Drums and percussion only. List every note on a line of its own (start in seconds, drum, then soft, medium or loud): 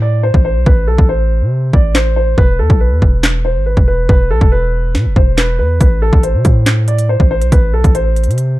0.34 kick medium
0.66 kick loud
0.98 kick loud
1.73 kick medium
1.95 snare loud
1.95 clap medium
2.38 kick loud
2.70 kick loud
3.02 kick medium
3.23 snare loud
3.23 clap loud
3.77 kick medium
4.09 kick loud
4.41 kick loud
4.95 snare medium
5.16 kick medium
5.38 snare loud
5.38 clap medium
5.81 kick loud
5.81 closed hi-hat medium
6.13 kick loud
6.23 closed hi-hat medium
6.45 kick medium
6.45 closed hi-hat medium
6.66 snare loud
6.66 clap loud
6.66 closed hi-hat medium
6.88 closed hi-hat medium
6.98 closed hi-hat medium
7.20 kick medium
7.41 closed hi-hat medium
7.52 kick loud
7.52 closed hi-hat medium
7.84 kick loud
7.84 closed hi-hat medium
7.95 closed hi-hat medium
8.16 closed hi-hat medium
8.23 closed hi-hat medium
8.31 closed hi-hat medium
8.38 closed hi-hat medium